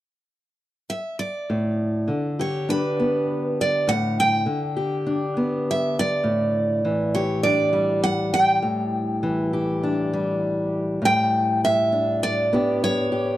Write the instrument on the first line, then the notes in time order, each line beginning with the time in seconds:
steel-string acoustic guitar
0.90 E5
1.19 D5
1.50 A2
2.08 D3
2.39 G4 C#5
2.69 D4 B4
3.00 B3
3.61 D5
3.87 A2 F#5
4.20 G5
4.46 D3
4.77 G4
5.07 D4
5.37 B3
5.71 E5
5.99 D5
6.24 A2
6.85 E3
7.15 G4 C#5
7.43 D4 D5
7.73 G3
8.04 F#5
8.34 G5
8.62 A2
9.23 E3
9.53 G4
9.83 D4
10.13 G3
11.02 A2 G5
11.65 E5
11.92 D4
12.23 D5
12.53 B3 D4 G4
12.84 C#5
13.12 G4